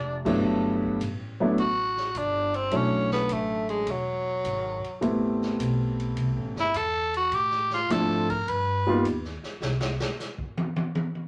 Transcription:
0.00 0.38 F1 medium
0.00 0.25 D4 loud
0.25 0.97 G2 medium
0.25 0.97 F#3 medium
0.25 0.97 A3 medium
0.25 0.97 B3 medium
0.25 0.97 D4 medium
0.25 0.97 E4 medium
0.25 kick medium
0.25 crash medium
0.43 0.99 G1 medium
0.83 kick medium
1.00 1.56 A1 medium
1.00 kick soft
1.00 hi-hat pedal medium
1.00 ride medium
1.40 1.56 F#3 medium
1.40 1.56 A3 medium
1.40 1.56 B3 medium
1.40 1.57 D4 medium
1.40 1.57 E4 medium
1.57 2.13 A1 medium
1.57 2.19 F#4 medium
1.57 kick soft
1.57 ride medium
1.97 snare soft
2.14 2.70 G1 medium
2.14 2.57 D4 medium
2.14 kick soft
2.14 hi-hat pedal soft
2.14 ride medium
2.54 2.77 C4 medium
2.54 ride soft
2.71 3.28 B1 medium
2.71 3.87 F#3 medium
2.71 3.87 A3 soft
2.71 3.87 C#4 soft
2.71 3.87 D4 soft
2.71 3.88 E4 medium
2.71 kick soft
2.71 ride medium
2.76 3.12 C#4 medium
3.11 3.34 B3 medium
3.11 snare medium
3.29 3.85 A1 medium
3.29 3.69 A3 medium
3.29 kick soft
3.29 hi-hat pedal medium
3.29 ride medium
3.69 3.92 G#3 medium
3.69 ride soft
3.87 4.43 E1 medium
3.87 5.04 F#3 medium
3.87 kick soft
3.87 ride medium
4.44 4.81 G#1 medium
4.44 kick soft
4.44 hi-hat pedal soft
4.44 ride medium
4.84 muted upright bass stroke soft
4.84 ride soft
5.01 5.58 A1 medium
5.01 6.63 G3 medium
5.01 6.63 A3 medium
5.01 6.64 B3 medium
5.01 6.64 C4 medium
5.01 6.64 E4 medium
5.01 kick soft
5.01 ride medium
5.42 snare soft
5.59 6.15 B1 medium
5.59 kick soft
5.59 hi-hat pedal medium
5.59 ride medium
6.00 ride soft
6.16 6.36 C2 medium
6.16 kick soft
6.16 ride medium
6.36 6.55 A1 medium
6.55 6.73 G1 medium
6.55 snare soft
6.60 6.78 E4 medium
6.74 7.30 E2 medium
6.74 7.15 A4 medium
6.74 kick soft
6.74 hi-hat pedal medium
6.74 ride medium
7.14 7.36 F#4 medium
7.14 ride soft
7.32 7.87 A2 medium
7.32 7.73 G4 medium
7.32 kick soft
7.32 ride medium
7.51 snare soft
7.70 7.93 F4 medium
7.70 snare soft
7.89 8.45 G#2 medium
7.89 8.25 F3 medium
7.89 8.25 A3 medium
7.89 8.26 C4 medium
7.89 8.26 D4 medium
7.89 8.26 E4 medium
7.89 8.31 A4 medium
7.89 kick soft
7.89 snare soft
7.89 hi-hat pedal medium
7.89 ride medium
8.29 8.51 A#4 medium
8.29 kick medium
8.29 ride soft
8.47 9.03 G2 medium
8.47 9.05 B4 medium
8.47 kick soft
8.47 ride medium
8.87 9.03 G3 medium
8.87 9.03 A#3 medium
8.87 9.03 B3 medium
8.87 9.03 D#4 medium
8.87 9.03 F4 medium
9.04 9.41 D#2 medium
9.04 kick soft
9.04 hi-hat pedal medium
9.04 ride medium
9.24 snare soft
9.43 snare soft
9.61 10.00 C2 medium
9.61 snare medium
9.81 snare medium
10.00 snare medium
10.20 snare soft
10.20 hi-hat pedal medium
10.38 kick medium
10.58 high tom loud
10.76 high tom medium
10.95 high tom medium
11.15 high tom soft

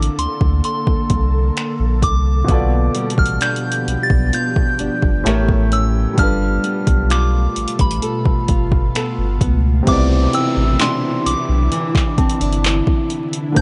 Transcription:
0.00 2.43 D3 medium
0.00 2.44 D3 medium
0.00 2.44 A#3 medium
0.00 2.45 A#3 medium
0.00 2.45 C4 medium
0.00 2.45 A4 medium
0.00 2.46 A4 medium
0.00 2.47 D5 medium
0.00 0.20 D6 medium
0.00 closed hi-hat medium
0.18 0.27 D2 soft
0.18 0.33 C6 medium
0.18 closed hi-hat medium
0.41 0.61 D2 medium
0.41 kick medium
0.64 2.07 C6 medium
0.64 closed hi-hat medium
0.87 0.96 C2 soft
0.87 kick medium
1.10 1.50 C2 medium
1.10 kick medium
1.10 closed hi-hat medium
1.57 finger snap loud
1.57 closed hi-hat medium
1.80 2.04 A#1 medium
2.02 2.43 C2 medium
2.02 3.14 D6 medium
2.02 kick medium
2.02 closed hi-hat medium
2.44 5.19 B2 medium
2.44 5.35 B2 medium
2.44 5.21 B3 medium
2.48 2.89 B1 loud
2.48 5.23 F3 medium
2.48 5.23 B3 medium
2.48 5.22 F4 medium
2.48 6.14 G4 medium
2.48 5.23 A4 medium
2.48 kick loud
2.48 closed hi-hat medium
2.54 5.24 D5 medium
2.95 5.25 G3 medium
2.95 closed hi-hat medium
3.10 closed hi-hat medium
3.18 3.38 A1 medium
3.18 3.42 F6 medium
3.18 kick medium
3.26 closed hi-hat medium
3.41 4.78 D4 medium
3.41 4.05 G6 medium
3.41 finger snap loud
3.41 closed hi-hat medium
3.56 closed hi-hat medium
3.72 closed hi-hat medium
3.87 3.97 B1 soft
3.87 closed hi-hat medium
4.03 4.35 A6 loud
4.10 4.30 B1 loud
4.10 kick medium
4.33 5.35 F4 medium
4.33 5.76 G6 loud
4.33 closed hi-hat medium
4.56 kick medium
4.79 4.89 G1 soft
4.79 5.35 D4 medium
4.79 closed hi-hat medium
5.02 5.23 G1 medium
5.02 kick medium
5.24 6.06 A1 loud
5.24 6.17 A2 medium
5.24 6.17 A3 medium
5.24 6.18 G4 medium
5.24 6.19 A#4 medium
5.24 finger snap loud
5.24 closed hi-hat medium
5.28 6.19 C#5 medium
5.49 kick medium
5.72 6.27 C#4 medium
5.72 5.87 E6 medium
5.72 closed hi-hat medium
6.13 9.81 G3 medium
6.13 9.82 D4 medium
6.18 6.58 G1 loud
6.18 9.83 B2 medium
6.18 9.87 G3 medium
6.18 9.84 A3 medium
6.18 9.83 F4 medium
6.18 9.84 A4 medium
6.18 7.14 F6 loud
6.18 kick loud
6.18 closed hi-hat medium
6.23 9.86 B4 medium
6.64 8.94 B3 medium
6.64 closed hi-hat medium
6.87 7.48 B1 medium
6.87 kick medium
6.87 closed hi-hat medium
7.10 8.47 F4 medium
7.10 7.82 D6 medium
7.10 finger snap loud
7.10 closed hi-hat medium
7.56 7.66 A1 soft
7.56 closed hi-hat medium
7.68 closed hi-hat medium
7.79 8.00 A1 medium
7.79 9.38 B5 medium
7.79 kick medium
7.79 closed hi-hat medium
7.91 closed hi-hat medium
8.02 8.95 A4 medium
8.02 closed hi-hat medium
8.25 8.35 G1 soft
8.25 kick medium
8.48 8.89 G1 medium
8.48 8.94 F4 medium
8.48 kick medium
8.48 closed hi-hat medium
8.72 kick medium
8.95 9.41 B3 medium
8.95 9.97 F4 medium
8.95 9.97 A4 medium
8.95 finger snap loud
8.95 closed hi-hat medium
9.18 9.38 G1 medium
9.41 9.81 C#2 medium
9.41 10.80 B3 medium
9.41 kick medium
9.41 closed hi-hat medium
9.83 13.50 C3 medium
9.83 13.51 C4 medium
9.87 10.27 C2 loud
9.87 13.56 C3 medium
9.87 13.61 D3 medium
9.87 13.54 B3 medium
9.87 13.53 D4 medium
9.87 13.53 E4 medium
9.87 10.35 D6 loud
9.87 kick loud
9.87 closed hi-hat medium
9.87 downlifter medium
9.92 13.55 D5 medium
10.33 10.78 E3 medium
10.33 11.85 G5 medium
10.33 10.77 E6 loud
10.33 closed hi-hat medium
10.57 10.77 A1 loud
10.79 11.71 E3 medium
10.79 13.61 B3 medium
10.79 12.17 D4 medium
10.79 11.28 C6 medium
10.79 clap loud
10.79 closed hi-hat medium
11.26 11.35 B1 soft
11.26 13.07 D6 medium
11.26 closed hi-hat medium
11.49 11.69 B1 medium
11.72 13.61 E3 medium
11.72 closed hi-hat medium
11.95 kick medium
11.95 clap medium
12.18 12.27 G1 soft
12.18 12.41 C4 medium
12.18 13.61 A5 medium
12.18 kick medium
12.18 closed hi-hat soft
12.29 closed hi-hat medium
12.41 12.81 G1 medium
12.41 13.61 D4 medium
12.41 closed hi-hat soft
12.53 closed hi-hat soft
12.65 clap loud
12.65 closed hi-hat medium
12.87 kick medium
13.10 closed hi-hat soft
13.33 closed hi-hat medium
13.52 13.61 D3 medium
13.52 13.61 A#3 medium
13.56 13.61 A#1 loud
13.56 13.61 C4 medium
13.56 13.61 G6 loud
13.56 kick loud
13.56 closed hi-hat medium

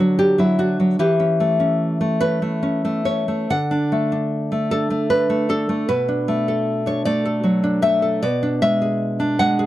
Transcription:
0.00 0.95 D3 medium
0.00 0.37 F#3 soft
0.00 0.17 D4 soft
0.00 0.17 F#4 medium
0.19 0.58 D4 soft
0.19 0.39 G4 medium
0.38 0.78 F#3 soft
0.38 0.59 E4 medium
0.59 0.99 D4 soft
0.59 0.98 F#4 medium
0.80 0.99 F#3 soft
0.99 3.47 E3 medium
0.99 2.18 G4 medium
1.20 1.58 C#4 soft
1.40 2.00 A3 soft
1.60 2.20 C#4 soft
2.01 2.41 A3 soft
2.21 2.61 C#4 soft
2.21 3.03 B4 medium
2.42 2.83 A3 soft
2.63 3.04 C#4 soft
2.85 3.27 A3 soft
3.05 3.50 C#4 soft
3.05 3.48 C#5 medium
3.28 3.50 A3 soft
3.50 5.84 D3 medium
3.50 4.67 F#5 medium
3.71 4.11 D4 soft
3.92 4.50 A3 soft
4.12 4.70 D4 soft
4.52 4.89 A3 soft
4.71 5.09 D4 soft
4.71 5.09 A4 medium
4.90 5.28 A3 soft
5.10 5.48 D4 soft
5.10 5.48 B4 medium
5.30 5.68 A3 soft
5.49 5.88 D4 soft
5.49 5.87 A4 medium
5.69 5.89 A3 soft
5.89 8.18 B2 medium
5.89 6.82 B4 medium
6.08 6.85 D4 soft
6.28 7.05 A3 medium
6.48 7.24 A4 soft
6.86 7.62 D4 soft
6.86 7.05 C#5 medium
7.05 7.81 A3 soft
7.05 7.80 D5 medium
7.25 8.01 A4 medium
7.44 8.22 F#3 soft
7.64 8.22 D4 soft
7.82 8.22 A3 soft
7.82 8.20 E5 medium
8.02 8.22 A4 soft
8.23 9.66 B2 medium
8.23 8.60 D5 medium
8.43 9.18 D4 soft
8.62 9.38 G#3 soft
8.62 9.36 E5 medium
8.82 9.58 G#4 soft
9.20 9.66 D4 soft
9.39 9.66 G#3 medium
9.39 9.66 F#5 medium
9.59 9.66 G#4 medium

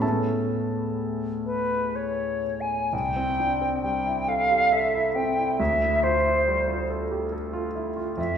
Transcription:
0.00 2.85 A2 soft
0.00 2.86 G#3 soft
0.00 2.87 B3 soft
0.00 2.87 C#4 soft
0.00 2.88 E4 soft
0.00 2.40 A4 soft
0.00 2.44 A5 medium
1.46 1.97 B4 medium
1.96 2.62 C#5 medium
2.61 2.95 G#5 medium
2.93 5.55 C2 soft
2.93 3.82 G5 medium
3.16 3.52 C4 soft
3.40 3.62 D4 soft
3.62 3.97 C4 soft
3.82 4.19 G3 soft
3.82 4.30 G5 medium
4.07 4.42 E4 soft
4.28 4.63 A4 soft
4.28 4.74 F5 medium
4.51 4.73 G4 soft
4.72 5.07 A4 soft
4.72 5.16 E5 medium
4.95 5.29 E4 soft
5.15 5.51 C4 soft
5.15 5.58 G5 medium
5.39 5.60 E4 soft
5.58 8.14 D2 soft
5.58 6.05 E5 medium
5.82 6.17 E4 soft
6.03 6.25 F4 soft
6.03 6.90 C5 medium
6.25 6.59 E4 soft
6.47 6.81 G3 soft
6.68 7.02 F4 soft
6.90 7.24 A4 soft
7.12 7.33 G4 soft
7.32 7.67 A4 soft
7.53 7.88 F4 soft
7.75 8.09 E4 soft
7.97 8.18 F4 soft
8.17 8.38 F2 soft
8.17 8.38 E5 medium

